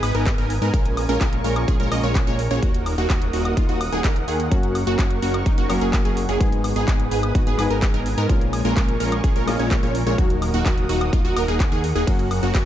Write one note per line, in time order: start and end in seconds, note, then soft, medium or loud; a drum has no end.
0.00 0.12 G#1 loud
0.00 0.13 B3 medium
0.00 0.13 D#4 medium
0.00 0.72 B4 medium
0.00 0.13 B4 medium
0.00 2.59 G#5 medium
0.00 0.72 D#6 medium
0.00 open hi-hat loud
0.00 high woodblock medium
0.15 0.36 G#1 loud
0.15 0.35 B3 medium
0.15 0.35 D#4 medium
0.15 0.35 A#4 loud
0.15 0.35 A#4 medium
0.15 closed hi-hat soft
0.26 kick loud
0.26 clap loud
0.26 closed hi-hat medium
0.38 0.59 G#1 loud
0.38 0.53 B3 medium
0.38 0.53 D#4 medium
0.38 0.53 A#4 loud
0.38 closed hi-hat soft
0.50 open hi-hat medium
0.62 0.71 G#2 loud
0.62 0.72 B3 medium
0.62 0.72 D#4 medium
0.62 0.72 A#4 loud
0.62 closed hi-hat soft
0.74 1.07 A#1 loud
0.74 1.06 G#3 medium
0.74 1.06 A#3 medium
0.74 1.06 C#4 medium
0.74 1.06 F4 medium
0.74 1.06 A#4 medium
0.74 4.48 A#4 medium
0.74 2.61 C#6 medium
0.74 kick loud
0.74 closed hi-hat medium
0.86 closed hi-hat soft
0.97 open hi-hat loud
0.97 high woodblock medium
1.09 1.18 A#1 loud
1.09 1.19 G#3 loud
1.09 1.19 A#3 medium
1.09 1.19 C#4 medium
1.09 1.19 F4 medium
1.09 1.19 A#4 loud
1.09 closed hi-hat soft
1.21 1.42 A#1 loud
1.21 1.42 G#3 loud
1.21 1.42 F4 medium
1.21 1.42 A#4 loud
1.21 kick loud
1.21 clap loud
1.21 closed hi-hat medium
1.33 closed hi-hat soft
1.44 1.66 A#1 loud
1.44 1.65 G#3 medium
1.44 1.65 A#3 medium
1.44 1.65 C#4 medium
1.44 1.65 F4 medium
1.44 1.65 A#4 medium
1.44 1.65 A#4 loud
1.44 open hi-hat medium
1.56 closed hi-hat soft
1.56 high woodblock medium
1.68 1.77 A#1 loud
1.68 1.77 G#3 medium
1.68 1.77 A#3 medium
1.68 1.77 C#4 medium
1.68 1.77 F4 medium
1.68 1.77 G#4 medium
1.68 kick loud
1.68 closed hi-hat medium
1.80 1.89 A#1 loud
1.80 1.89 G#3 medium
1.80 1.89 A#3 medium
1.80 1.89 C#4 medium
1.80 1.89 F4 medium
1.80 1.89 A#4 loud
1.80 closed hi-hat soft
1.92 2.01 A#1 medium
1.92 2.02 G#3 medium
1.92 2.02 A#3 medium
1.92 2.02 C#4 medium
1.92 2.02 F4 medium
1.92 2.02 D#5 medium
1.92 open hi-hat loud
1.92 high woodblock medium
2.03 2.25 A#1 loud
2.03 2.24 G#3 medium
2.03 2.24 A#3 medium
2.03 2.24 C#4 medium
2.03 2.24 F4 medium
2.03 2.24 C#5 loud
2.03 2.24 C#5 medium
2.03 closed hi-hat soft
2.15 kick loud
2.15 clap loud
2.15 closed hi-hat medium
2.27 2.48 A#1 loud
2.27 2.42 G#3 medium
2.27 2.42 A#3 medium
2.27 2.42 C#4 medium
2.27 2.42 F4 medium
2.27 2.42 C#5 loud
2.27 closed hi-hat soft
2.39 open hi-hat medium
2.51 2.60 A#1 loud
2.51 2.61 G#3 loud
2.51 2.61 A#3 medium
2.51 2.61 C#4 medium
2.51 2.61 F4 medium
2.51 2.61 C#5 loud
2.51 closed hi-hat soft
2.62 2.96 D#1 loud
2.62 2.95 A#3 medium
2.62 2.95 D#4 medium
2.62 2.95 F#4 medium
2.62 6.37 F#5 medium
2.62 4.50 D#6 medium
2.62 kick loud
2.62 closed hi-hat medium
2.74 closed hi-hat soft
2.86 open hi-hat loud
2.86 high woodblock medium
2.98 3.07 D#1 loud
2.98 3.08 A#3 loud
2.98 3.08 D#4 medium
2.98 3.08 F#4 loud
2.98 closed hi-hat soft
3.10 3.31 D#1 loud
3.10 3.31 A#3 medium
3.10 3.31 F#4 loud
3.10 kick loud
3.10 clap loud
3.10 closed hi-hat medium
3.22 closed hi-hat soft
3.33 3.55 D#1 loud
3.33 3.54 A#3 medium
3.33 3.54 D#4 medium
3.33 3.54 F#4 medium
3.33 open hi-hat medium
3.45 closed hi-hat soft
3.45 high woodblock medium
3.57 3.66 D#1 loud
3.57 3.66 A#3 medium
3.57 3.66 D#4 medium
3.57 3.66 F4 medium
3.57 kick loud
3.57 closed hi-hat medium
3.69 3.90 D#1 medium
3.69 3.78 A#3 medium
3.69 3.78 D#4 medium
3.69 3.78 F#4 loud
3.69 closed hi-hat soft
3.81 open hi-hat loud
3.81 high woodblock medium
3.92 4.02 D#1 loud
3.92 4.02 A#3 loud
3.92 4.02 D#4 medium
3.92 4.01 G#4 loud
3.92 4.02 G#4 loud
3.92 closed hi-hat soft
4.04 4.26 D#1 loud
4.04 4.25 A#3 medium
4.04 4.25 D#4 medium
4.04 4.25 A#4 loud
4.04 kick loud
4.04 clap loud
4.04 closed hi-hat medium
4.16 closed hi-hat soft
4.28 4.49 D#2 loud
4.28 4.49 A#3 medium
4.28 4.49 D#4 medium
4.28 4.49 G#4 medium
4.28 open hi-hat medium
4.40 closed hi-hat soft
4.50 4.85 F#1 loud
4.50 5.66 F#3 medium
4.50 5.67 A#3 medium
4.50 4.84 A#3 medium
4.50 4.84 C#4 medium
4.50 5.67 C#4 medium
4.50 4.84 F#4 medium
4.50 5.67 F#4 medium
4.50 6.39 A#4 medium
4.50 6.39 C#6 medium
4.50 kick loud
4.50 closed hi-hat medium
4.63 closed hi-hat soft
4.75 open hi-hat loud
4.75 high woodblock medium
4.87 4.96 F#1 loud
4.87 4.97 A#3 loud
4.87 4.97 C#4 medium
4.87 4.97 F#4 loud
4.87 closed hi-hat soft
4.99 5.20 F#1 loud
4.99 5.20 C#4 medium
4.99 5.20 F#4 loud
4.99 kick loud
4.99 clap loud
4.99 closed hi-hat medium
5.11 closed hi-hat soft
5.22 5.44 F#1 loud
5.22 5.43 A#3 medium
5.22 5.43 C#4 medium
5.22 5.43 F#4 medium
5.22 open hi-hat loud
5.34 closed hi-hat soft
5.34 high woodblock medium
5.46 5.55 F#1 loud
5.46 5.55 A#3 medium
5.46 5.55 C#4 medium
5.46 5.55 D#4 medium
5.46 kick loud
5.46 closed hi-hat medium
5.58 5.67 F#1 loud
5.58 5.67 A#3 medium
5.58 5.67 C#4 medium
5.58 5.67 F#4 loud
5.58 closed hi-hat soft
5.69 5.79 F#1 loud
5.69 6.37 F#3 medium
5.69 6.38 A#3 medium
5.69 5.80 A#3 medium
5.69 5.80 C#4 medium
5.69 6.38 C#4 medium
5.69 6.38 F#4 loud
5.69 5.80 A#4 medium
5.69 open hi-hat loud
5.69 high woodblock medium
5.81 6.03 F#1 loud
5.81 6.02 A#3 medium
5.81 6.02 C#4 medium
5.81 6.02 G#4 medium
5.81 6.02 G#4 loud
5.81 closed hi-hat soft
5.93 kick loud
5.93 clap loud
5.93 closed hi-hat medium
6.05 6.26 F#1 loud
6.05 6.20 A#3 medium
6.05 6.20 C#4 medium
6.05 6.20 G#4 loud
6.05 6.20 G#4 medium
6.05 closed hi-hat soft
6.17 open hi-hat medium
6.29 6.38 F#1 loud
6.29 6.39 A#3 loud
6.29 6.39 C#4 medium
6.29 6.39 G#4 loud
6.29 closed hi-hat soft
6.40 6.74 G#1 loud
6.40 7.55 G#3 medium
6.40 7.56 B3 medium
6.40 6.73 B3 medium
6.40 7.56 D#4 medium
6.40 6.73 G#4 medium
6.40 7.56 G#4 medium
6.40 8.28 B4 medium
6.40 10.15 G#5 medium
6.40 8.28 D#6 medium
6.40 kick loud
6.40 closed hi-hat medium
6.52 closed hi-hat soft
6.64 open hi-hat loud
6.64 high woodblock medium
6.76 6.85 G#1 loud
6.76 6.86 B3 loud
6.76 6.86 D#4 medium
6.76 6.86 G#4 loud
6.76 closed hi-hat soft
6.88 7.09 G#1 loud
6.88 7.09 B3 medium
6.88 7.09 D#4 medium
6.88 7.09 G#4 loud
6.88 kick loud
6.88 clap loud
6.88 closed hi-hat medium
7.00 closed hi-hat soft
7.11 7.33 G#1 loud
7.11 7.32 B3 medium
7.11 7.32 D#4 medium
7.11 7.32 G#4 medium
7.11 open hi-hat loud
7.23 closed hi-hat soft
7.23 high woodblock medium
7.35 7.44 G#1 loud
7.35 7.44 B3 medium
7.35 7.44 D#4 medium
7.35 7.44 F#4 medium
7.35 kick loud
7.35 closed hi-hat medium
7.47 7.56 G#1 loud
7.47 7.56 B3 medium
7.47 7.56 D#4 medium
7.47 7.56 G#4 loud
7.47 closed hi-hat soft
7.57 7.68 G#1 loud
7.57 8.26 G#3 medium
7.57 8.26 B3 medium
7.57 7.69 B3 medium
7.57 7.69 D#4 medium
7.57 8.27 D#4 medium
7.57 8.27 G#4 loud
7.57 7.69 B4 medium
7.57 open hi-hat loud
7.57 high woodblock medium
7.70 7.92 G#1 loud
7.70 7.91 B3 medium
7.70 7.91 D#4 medium
7.70 7.91 A#4 medium
7.70 closed hi-hat soft
7.82 kick loud
7.82 clap loud
7.82 closed hi-hat medium
7.94 8.15 G#1 loud
7.94 8.09 B3 medium
7.94 8.09 D#4 medium
7.94 8.09 A#4 loud
7.94 closed hi-hat soft
8.06 open hi-hat loud
8.18 8.27 G#2 loud
8.18 8.28 B3 loud
8.18 8.28 D#4 medium
8.18 8.28 A#4 loud
8.18 closed hi-hat soft
8.28 8.63 A#1 loud
8.28 9.44 G#3 medium
8.28 8.62 G#3 medium
8.28 9.45 A#3 medium
8.28 8.62 A#3 medium
8.28 8.62 C#4 medium
8.28 9.45 C#4 medium
8.28 8.62 F4 medium
8.28 9.45 F4 medium
8.28 8.62 A#4 medium
8.28 12.04 A#4 medium
8.28 10.17 C#6 medium
8.28 kick loud
8.28 closed hi-hat medium
8.41 closed hi-hat soft
8.53 open hi-hat loud
8.53 high woodblock medium
8.65 8.74 A#1 loud
8.65 8.75 G#3 loud
8.65 8.75 A#3 medium
8.65 8.75 C#4 medium
8.65 8.75 F4 medium
8.65 8.75 A#4 loud
8.65 closed hi-hat soft
8.77 8.98 A#1 loud
8.77 8.98 G#3 medium
8.77 8.98 A#3 medium
8.77 8.98 C#4 medium
8.77 8.98 F4 medium
8.77 8.98 A#4 loud
8.77 kick loud
8.77 clap loud
8.77 closed hi-hat medium
8.89 closed hi-hat soft
9.00 9.22 A#1 loud
9.00 9.21 G#3 medium
9.00 9.21 A#3 medium
9.00 9.21 C#4 medium
9.00 9.21 F4 medium
9.00 9.21 A#4 loud
9.00 open hi-hat loud
9.12 closed hi-hat soft
9.12 high woodblock medium
9.24 9.33 A#1 loud
9.24 9.33 G#3 medium
9.24 9.33 A#3 medium
9.24 9.33 C#4 medium
9.24 9.33 F4 medium
9.24 9.33 G#4 medium
9.24 kick loud
9.24 closed hi-hat medium
9.36 9.45 A#1 loud
9.36 9.45 G#3 medium
9.36 9.45 A#3 medium
9.36 9.45 C#4 medium
9.36 9.45 F4 medium
9.36 9.45 A#4 loud
9.36 closed hi-hat soft
9.46 9.57 A#1 loud
9.46 10.15 G#3 loud
9.46 9.58 G#3 medium
9.46 10.15 A#3 medium
9.46 9.58 A#3 medium
9.46 9.58 C#4 medium
9.46 10.16 C#4 medium
9.46 9.58 F4 medium
9.46 10.16 F4 loud
9.46 9.58 D#5 medium
9.46 open hi-hat loud
9.46 high woodblock medium
9.59 9.81 A#1 loud
9.59 9.79 G#3 medium
9.59 9.79 A#3 medium
9.59 9.79 C#4 medium
9.59 9.79 F4 medium
9.59 9.80 C#5 medium
9.59 closed hi-hat soft
9.71 kick loud
9.71 clap loud
9.71 closed hi-hat medium
9.83 10.04 A#1 loud
9.83 9.98 G#3 medium
9.83 9.98 A#3 medium
9.83 9.98 C#4 medium
9.83 9.98 F4 medium
9.83 9.98 C#5 loud
9.83 9.98 C#5 medium
9.83 closed hi-hat soft
9.95 open hi-hat loud
10.06 10.16 A#1 loud
10.06 10.17 G#3 medium
10.06 10.17 A#3 medium
10.06 10.17 C#4 medium
10.06 10.17 F4 medium
10.06 10.17 C#5 loud
10.06 closed hi-hat soft
10.17 10.51 D#1 loud
10.17 11.33 F#3 medium
10.17 11.34 A#3 medium
10.17 10.51 A#3 medium
10.17 10.51 D#4 medium
10.17 11.34 D#4 medium
10.17 10.51 F#4 medium
10.17 11.34 F#4 medium
10.17 12.65 F#5 medium
10.17 12.05 D#6 medium
10.17 kick loud
10.17 closed hi-hat medium
10.30 closed hi-hat soft
10.42 open hi-hat loud
10.42 high woodblock medium
10.54 10.63 D#1 loud
10.54 10.64 A#3 loud
10.54 10.64 D#4 medium
10.54 10.64 F#4 loud
10.54 closed hi-hat soft
10.66 10.87 D#1 loud
10.66 10.86 A#3 medium
10.66 10.86 D#4 medium
10.66 10.87 F#4 loud
10.66 kick loud
10.66 clap loud
10.66 closed hi-hat medium
10.78 closed hi-hat soft
10.89 11.11 D#1 loud
10.89 11.10 A#3 medium
10.89 11.10 D#4 medium
10.89 11.10 F#4 medium
10.89 11.10 F#4 loud
10.89 open hi-hat loud
11.01 closed hi-hat soft
11.01 high woodblock medium
11.13 11.22 D#1 loud
11.13 11.22 A#3 medium
11.13 11.22 D#4 medium
11.13 11.22 F4 medium
11.13 kick loud
11.13 closed hi-hat medium
11.25 11.34 D#1 loud
11.25 11.34 A#3 medium
11.25 11.34 D#4 medium
11.25 11.34 F#4 loud
11.25 closed hi-hat soft
11.36 11.46 D#1 loud
11.36 11.47 A#3 medium
11.36 11.47 D#4 medium
11.36 11.47 A#4 medium
11.36 open hi-hat loud
11.36 high woodblock medium
11.48 11.70 D#1 loud
11.48 11.68 A#3 medium
11.48 11.68 D#4 medium
11.48 11.68 G#4 loud
11.48 11.68 G#4 medium
11.48 closed hi-hat soft
11.60 kick loud
11.60 clap loud
11.60 closed hi-hat medium
11.72 11.93 D#2 medium
11.72 11.87 A#3 medium
11.72 11.87 D#4 medium
11.72 11.87 G#4 medium
11.72 11.87 G#4 loud
11.72 closed hi-hat soft
11.84 open hi-hat loud
11.95 12.05 D#1 loud
11.95 12.06 A#3 loud
11.95 12.06 D#4 medium
11.95 12.06 G#4 loud
11.95 closed hi-hat soft
12.06 12.40 F#1 loud
12.06 12.65 F#3 medium
12.06 12.65 A#3 medium
12.06 12.40 A#3 medium
12.06 12.40 C#4 medium
12.06 12.65 C#4 medium
12.06 12.40 F#4 medium
12.06 12.65 F#4 medium
12.06 12.65 A#4 medium
12.06 12.65 C#6 medium
12.06 kick loud
12.06 closed hi-hat medium
12.06 ride medium
12.19 closed hi-hat soft
12.31 open hi-hat loud
12.31 high woodblock medium
12.43 12.52 F#1 loud
12.43 12.53 A#3 loud
12.43 12.53 C#4 medium
12.43 12.53 F#4 loud
12.43 closed hi-hat soft
12.55 12.65 F#1 loud
12.55 12.65 A#3 medium
12.55 12.65 C#4 medium
12.55 12.65 F#4 loud
12.55 kick loud
12.55 clap loud
12.55 closed hi-hat medium
12.55 ride medium